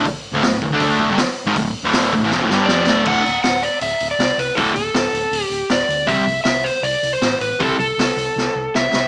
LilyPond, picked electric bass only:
\new Staff \with { instrumentName = "Picked electric bass" } { \clef bass \time 4/4 \key c \lydian \tempo 4 = 159 r8. d,,16 d,,8 d,,16 d,4 g,,16 r8. gis,,16 | d,,8 r16 d,,8. d,,16 a,,16 f,,16 d,,16 g,,8 f,,8 d,,8 | d,,8 d,,8 d,,4 d,,8 d,,8 c,8 c,8 | d,,8 d,,8 d,,8 d,,8 d,,8 d,,8 d,,8 d,8 |
c,8 c,8 c,4 c,8 c,8 a,,8 a,,8 | c,8 c,8 c,8 c,8 c,8 c,8 c,8 c,8 | }